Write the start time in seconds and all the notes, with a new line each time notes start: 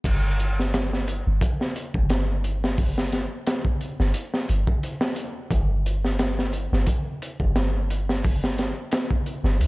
0.04 G1, kick, closed hi-hat, crash
0.40 closed hi-hat
0.60 snare
0.74 snare, closed hi-hat
0.93 snare
1.08 closed hi-hat
1.27 G1
1.41 kick, closed hi-hat
1.61 snare
1.76 closed hi-hat
1.94 G1, kick
2.10 snare, closed hi-hat
2.44 closed hi-hat
2.64 snare
2.77 kick, open hi-hat
2.98 snare
3.12 snare, closed hi-hat
3.47 snare, closed hi-hat
3.65 kick
3.81 closed hi-hat
4.00 G1, snare
4.14 closed hi-hat
4.34 snare
4.49 G1, closed hi-hat
4.67 kick
4.83 closed hi-hat
5.01 snare
5.16 closed hi-hat
5.51 G1, kick, closed hi-hat
5.86 closed hi-hat
6.05 snare
6.19 snare, closed hi-hat
6.39 snare
6.53 closed hi-hat
6.72 G1, snare
6.86 kick, closed hi-hat
7.22 closed hi-hat
7.40 G1, kick
7.56 snare, closed hi-hat
7.90 closed hi-hat
8.09 snare
8.24 kick, open hi-hat
8.44 snare
8.58 snare, closed hi-hat
8.92 snare, closed hi-hat
9.11 kick
9.26 closed hi-hat
9.44 G1, snare
9.59 D2, closed hi-hat